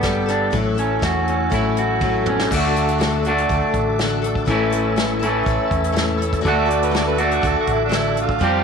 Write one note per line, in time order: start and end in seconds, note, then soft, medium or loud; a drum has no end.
0.00 0.49 G1 medium
0.00 0.51 B3 medium
0.00 0.54 B3 medium
0.00 0.27 B3 medium
0.00 0.29 D4 medium
0.00 0.28 D4 medium
0.00 0.51 G4 medium
0.00 0.27 G4 medium
0.00 0.51 A4 medium
0.00 1.54 A4 medium
0.00 kick medium
0.00 snare medium
0.00 closed hi-hat medium
0.05 0.54 G3 medium
0.05 0.25 A4 medium
0.26 0.52 D4 soft
0.26 0.52 G4 soft
0.26 0.52 A4 medium
0.26 snare soft
0.26 closed hi-hat medium
0.51 0.98 A1 loud
0.51 0.76 A2 medium
0.51 0.77 F#3 medium
0.51 0.77 A3 medium
0.51 0.76 C#4 medium
0.51 2.49 C#4 medium
0.51 0.74 E4 medium
0.51 0.73 A4 medium
0.51 kick loud
0.51 closed hi-hat medium
0.55 1.77 A2 medium
0.55 2.49 F#4 medium
0.55 2.40 A4 medium
0.74 0.98 A3 soft
0.74 0.98 C#4 soft
0.74 1.00 E4 medium
0.74 1.01 A4 medium
0.74 closed hi-hat medium
0.99 1.48 E2 medium
0.99 1.49 A3 medium
0.99 1.50 C#4 medium
0.99 1.50 E4 medium
0.99 1.51 A4 medium
0.99 kick loud
0.99 snare loud
0.99 closed hi-hat medium
1.04 1.77 F#4 medium
1.28 2.28 C#4 medium
1.28 closed hi-hat medium
1.50 2.46 A1 medium
1.50 2.00 A2 medium
1.50 2.00 F#3 medium
1.50 1.99 A3 medium
1.50 2.00 C#4 medium
1.50 2.01 E4 medium
1.50 2.01 A4 medium
1.50 kick loud
1.50 closed hi-hat medium
1.77 2.52 F#4 medium
1.77 closed hi-hat medium
2.00 2.50 A3 medium
2.00 2.50 C#4 medium
2.00 2.51 E4 medium
2.00 2.51 A4 medium
2.00 kick loud
2.00 high tom medium
2.04 2.52 F#3 medium
2.20 2.41 G3 medium
2.20 2.42 A3 medium
2.20 2.43 B3 medium
2.26 2.45 C4 medium
2.26 2.52 C#4 medium
2.26 mid tom medium
2.31 2.47 D4 medium
2.31 2.48 E4 medium
2.36 2.49 F4 medium
2.36 2.51 G4 medium
2.36 snare medium
2.41 2.49 A4 medium
2.41 2.53 B4 medium
2.46 4.46 D4 medium
2.46 4.46 F#4 medium
2.46 4.46 A4 medium
2.46 2.54 C5 medium
2.51 3.45 D2 loud
2.51 2.76 D3 medium
2.51 2.75 A3 medium
2.51 2.76 D4 medium
2.51 2.75 F#4 medium
2.51 2.74 A4 medium
2.51 kick loud
2.51 crash loud
2.75 2.97 D4 soft
2.75 2.99 F#4 medium
2.75 2.99 A4 medium
2.75 closed hi-hat medium
2.88 closed hi-hat medium
2.98 3.24 D3 medium
2.98 3.24 A3 medium
2.98 3.24 D4 medium
2.98 3.24 F#4 medium
2.98 3.22 A4 medium
2.98 snare loud
2.98 closed hi-hat medium
3.23 3.49 D4 soft
3.23 3.49 F#4 medium
3.23 3.48 A4 medium
3.23 closed hi-hat medium
3.29 4.49 D3 medium
3.29 4.50 A3 medium
3.38 closed hi-hat medium
3.49 3.60 D2 medium
3.49 3.99 A3 medium
3.49 3.99 D4 medium
3.49 3.99 F#4 medium
3.49 4.01 A4 medium
3.49 kick loud
3.49 closed hi-hat medium
3.74 4.44 A1 medium
3.74 kick medium
3.74 closed hi-hat medium
3.99 4.24 D3 medium
3.99 4.24 A3 medium
3.99 4.24 D4 medium
3.99 4.23 F#4 loud
3.99 4.21 A4 medium
3.99 snare loud
3.99 closed hi-hat medium
4.22 4.46 D4 soft
4.22 4.47 F#4 medium
4.22 4.46 A4 medium
4.22 closed hi-hat medium
4.35 kick medium
4.45 5.42 A1 loud
4.45 4.71 A2 medium
4.45 4.72 E3 medium
4.45 4.72 A3 medium
4.45 4.71 C#4 medium
4.45 6.43 C#4 medium
4.45 6.43 E4 medium
4.45 4.70 E4 medium
4.45 6.43 A4 medium
4.45 4.69 A4 medium
4.45 kick medium
4.45 closed hi-hat medium
4.70 4.95 A3 soft
4.70 4.95 C#4 medium
4.70 4.96 E4 medium
4.70 4.96 A4 medium
4.70 closed hi-hat medium
4.96 5.21 A2 medium
4.96 5.21 E3 medium
4.96 5.21 A3 medium
4.96 5.21 C#4 medium
4.96 5.19 E4 medium
4.96 5.18 A4 medium
4.96 snare loud
4.96 closed hi-hat medium
5.19 5.42 A3 medium
5.19 5.42 C#4 medium
5.19 5.44 E4 medium
5.19 5.45 A4 medium
5.19 closed hi-hat medium
5.26 6.46 A2 medium
5.26 6.45 E3 medium
5.43 5.58 A1 medium
5.43 5.91 A3 medium
5.43 5.92 C#4 medium
5.43 5.92 E4 medium
5.43 5.93 A4 medium
5.43 kick loud
5.43 closed hi-hat medium
5.71 6.41 E2 medium
5.71 kick medium
5.71 closed hi-hat medium
5.84 closed hi-hat medium
5.92 6.19 A2 medium
5.92 6.19 E3 medium
5.92 6.19 A3 medium
5.92 6.18 C#4 medium
5.92 6.18 E4 medium
5.92 6.17 A4 loud
5.92 closed hi-hat medium
5.97 snare loud
6.18 6.40 A3 soft
6.18 6.41 C#4 medium
6.18 6.41 E4 medium
6.18 6.42 A4 medium
6.18 closed hi-hat medium
6.33 kick medium
6.33 closed hi-hat medium
6.41 7.40 D2 loud
6.41 6.68 D3 medium
6.41 6.68 A3 medium
6.41 6.68 D4 medium
6.41 8.40 D4 medium
6.41 6.66 F#4 loud
6.41 8.40 F#4 medium
6.41 6.65 A4 medium
6.41 8.40 A4 medium
6.45 7.18 D3 medium
6.45 7.18 A3 medium
6.45 7.18 D4 medium
6.45 7.17 F#4 medium
6.45 6.60 F#5 medium
6.45 kick medium
6.45 closed hi-hat medium
6.58 6.71 E5 medium
6.66 6.90 D4 soft
6.66 6.90 F#4 medium
6.66 6.91 A4 medium
6.66 6.85 D5 medium
6.70 closed hi-hat medium
6.82 6.97 B4 medium
6.82 closed hi-hat medium
6.90 7.17 D3 medium
6.90 7.17 A3 medium
6.90 7.16 D4 medium
6.90 7.15 F#4 medium
6.90 7.13 A4 loud
6.94 7.07 D5 medium
6.94 snare loud
6.94 closed hi-hat medium
7.07 7.23 B4 medium
7.15 7.40 D4 soft
7.15 7.40 F#4 medium
7.15 7.41 A4 medium
7.15 closed hi-hat medium
7.21 8.41 D3 medium
7.21 8.42 A3 medium
7.21 7.34 A4 medium
7.31 7.44 F#4 medium
7.31 closed hi-hat medium
7.40 7.55 D2 medium
7.40 7.88 A3 medium
7.40 7.88 D4 medium
7.40 7.90 F#4 medium
7.40 7.90 A4 medium
7.40 kick loud
7.40 closed hi-hat medium
7.47 7.57 A4 medium
7.59 7.74 F#4 medium
7.67 8.38 A1 medium
7.67 kick medium
7.67 closed hi-hat medium
7.72 7.82 E4 medium
7.84 7.98 D4 medium
7.89 8.16 D3 medium
7.89 8.16 A3 medium
7.89 8.15 D4 medium
7.89 8.13 F#4 medium
7.89 8.12 A4 medium
7.89 snare loud
7.89 closed hi-hat medium
7.97 8.19 E4 medium
8.13 8.40 D4 soft
8.13 8.40 F#4 medium
8.13 8.40 A4 medium
8.13 closed hi-hat medium
8.21 8.64 F4 loud
8.29 kick medium
8.39 8.64 F2 loud
8.39 8.64 F3 medium
8.39 8.64 G3 medium
8.39 8.64 C4 medium
8.39 8.64 F4 medium
8.39 8.64 G4 medium
8.39 8.63 C5 medium
8.39 kick medium
8.39 closed hi-hat medium
8.45 8.64 G4 medium